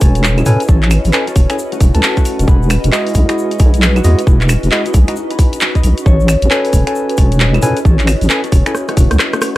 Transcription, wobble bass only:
0.02 0.43 E1 medium
0.46 0.56 A2 loud
0.69 0.99 A1 loud
1.05 1.11 A1 medium
1.36 1.46 E1 loud
1.81 1.91 E1 loud
1.95 2.01 C#2 medium
2.40 2.45 E1 loud
2.48 2.78 E1 loud
2.84 2.90 E1 medium
3.15 3.25 B1 loud
3.60 4.01 B1 medium
4.04 4.15 E2 loud
4.27 4.57 E1 loud
4.63 4.69 E1 medium
4.94 5.04 B1 loud
5.84 5.94 B1 loud
6.06 6.36 A1 loud
6.42 6.48 A1 medium
6.73 6.83 E1 loud
7.18 7.59 E1 medium
7.63 7.73 A2 loud
7.85 8.15 A1 loud
8.22 8.28 A1 loud
8.52 8.62 E1 loud
8.97 9.07 E1 loud
9.11 9.17 C#2 medium

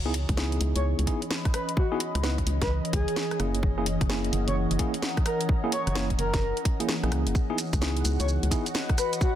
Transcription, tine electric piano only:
0.06 0.13 B3 medium
0.06 0.13 D#4 medium
0.06 0.13 E4 medium
0.06 0.13 G#4 medium
0.37 1.05 B3 medium
0.37 1.05 D#4 medium
0.37 1.05 E4 medium
0.37 1.05 G#4 medium
1.07 1.20 B3 medium
1.07 1.20 D#4 medium
1.07 1.20 E4 medium
1.07 1.20 G#4 medium
1.92 1.99 B3 medium
1.92 1.99 D#4 medium
1.92 1.99 E4 medium
1.92 1.99 G#4 loud
2.23 2.36 B3 medium
2.23 2.36 D#4 medium
2.23 2.36 E4 medium
2.23 2.36 B4 medium
3.40 3.58 A#3 medium
3.40 3.58 C#4 medium
3.40 3.58 E4 medium
3.40 3.58 G#4 medium
3.78 3.85 A#3 medium
3.78 3.85 C#4 medium
3.78 3.85 E4 medium
3.78 3.85 G#4 medium
4.09 4.77 A#3 medium
4.09 4.77 C#4 medium
4.09 4.77 E4 medium
4.09 4.77 G#4 medium
4.79 4.92 A#3 medium
4.79 4.92 C#4 medium
4.79 4.92 E4 medium
4.79 4.92 G#4 medium
5.64 5.71 A#3 medium
5.64 5.71 C#4 medium
5.64 5.71 E4 medium
5.64 5.71 G#4 loud
5.95 6.08 A#3 medium
5.95 6.08 C#4 medium
5.95 6.08 E4 medium
5.95 6.08 C#5 medium
6.80 6.94 A#3 medium
6.80 6.94 C#4 medium
6.80 6.94 E4 medium
6.80 6.94 G#4 medium
7.03 7.34 A#3 medium
7.03 7.34 C#4 medium
7.03 7.34 E4 medium
7.03 7.34 G#4 medium
7.50 7.57 B3 medium
7.50 7.57 D#4 medium
7.50 7.57 E4 medium
7.50 7.57 G#4 medium
7.81 8.49 B3 medium
7.81 8.49 D#4 medium
7.81 8.49 E4 medium
7.81 8.49 G#4 medium
8.51 8.64 B3 medium
8.51 8.64 D#4 medium
8.51 8.64 E4 medium
8.51 8.64 G#4 medium

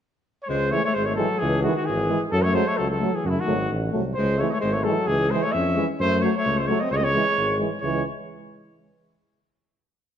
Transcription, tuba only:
0.49 0.74 C#2 medium
0.96 1.21 G#1 medium
1.42 1.67 C#2 loud
1.89 2.13 G#1 medium
2.32 2.58 F#2 loud
2.79 3.04 C#2 medium
3.24 3.37 F#2 medium
3.47 3.68 G#1 medium
3.71 3.91 A1 medium
3.94 4.14 C2 medium
4.17 4.42 C#2 medium
4.63 4.88 G#1 medium
5.08 5.33 C#2 medium
5.54 5.79 F2 medium
5.99 6.25 F#2 loud
6.46 6.71 C#2 medium
6.91 7.16 C#2 medium
7.37 7.62 G#1 medium
7.83 8.04 C#2 medium

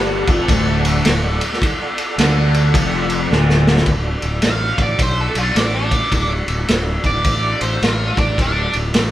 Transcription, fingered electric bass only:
0.00 0.25 G1 medium
0.28 0.47 F1 medium
0.48 1.01 D1 medium
1.07 1.39 D1 medium
2.18 2.71 D2 medium
2.74 3.27 F1 medium
3.30 3.83 D1 medium
3.86 4.14 D1 medium
4.23 4.39 D1 medium
4.44 4.71 A1 medium
4.78 4.94 A1 medium
4.99 5.26 B1 medium
5.35 5.51 B1 medium
5.55 5.99 A1 medium
6.12 6.40 D1 medium
6.48 6.64 D1 medium
6.69 6.96 D1 medium
7.04 7.21 D1 medium
7.25 7.52 A1 medium
7.61 7.77 A1 medium
7.82 8.10 A1 medium
8.18 8.34 A1 medium
8.38 8.66 D1 medium
8.75 8.91 D1 medium
8.95 9.11 A1 medium

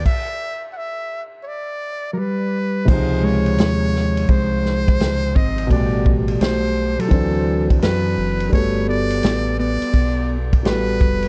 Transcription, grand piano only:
2.85 5.65 C3 medium
2.85 5.66 F3 medium
2.90 5.67 G#3 medium
2.90 5.68 D#4 medium
5.67 7.07 B2 medium
5.67 7.08 A3 medium
5.72 7.09 G3 medium
5.72 7.11 G4 medium
7.08 8.48 E3 medium
7.08 8.49 C4 medium
7.13 8.51 D4 medium
7.13 8.52 F#4 medium
8.50 10.59 G3 medium
8.50 10.60 B3 medium
8.54 10.61 F#4 medium
8.54 10.63 A4 medium
10.63 11.28 G3 medium
10.63 10.73 A3 soft
10.63 11.28 F#4 soft
10.63 11.28 A4 medium
10.71 11.28 B3 soft

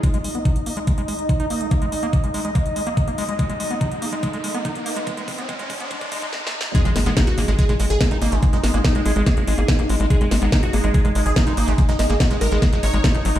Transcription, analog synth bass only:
6.85 6.92 G#1 medium
6.96 7.02 G#1 loud
7.06 7.13 G#1 loud
7.27 7.34 G#1 medium
7.38 7.44 G#1 loud
7.48 7.55 G#1 medium
7.69 7.76 G#1 medium
7.80 7.86 G#1 loud
7.90 7.97 G#1 medium
8.11 8.18 G#1 medium
8.22 8.28 G#1 loud
8.32 8.39 G#1 medium
8.53 8.60 G#1 medium
8.64 8.70 G#1 loud
8.74 8.80 G#1 medium
8.95 9.01 G#1 medium
9.05 9.12 G#1 loud
9.16 9.22 G#1 medium
9.37 9.43 G#1 medium
9.47 9.54 G#1 loud
9.58 9.64 G#1 medium
9.79 9.85 G#1 medium
9.89 9.96 G#1 loud
10.00 10.06 G#1 medium
10.21 10.27 G#1 medium
10.31 10.38 G#1 loud
10.42 10.48 G#1 loud
10.63 10.69 G#1 medium
10.73 10.80 G#1 loud
10.84 10.90 G#1 medium
11.05 11.11 G#1 medium
11.15 11.22 G#1 loud
11.26 11.32 G#1 medium
11.47 11.53 G#1 medium
11.57 11.64 G#1 loud
11.68 11.74 G#1 medium
11.89 11.95 G#1 medium
11.99 12.06 G#1 loud
12.10 12.16 G#1 medium
12.31 12.37 G#1 medium
12.41 12.48 G#1 loud
12.52 12.58 G#1 loud
12.73 12.79 G#1 medium
12.83 12.90 G#1 loud
12.94 13.00 G#1 medium
13.15 13.21 G#1 medium
13.25 13.32 G#1 loud
13.36 13.39 G#1 medium

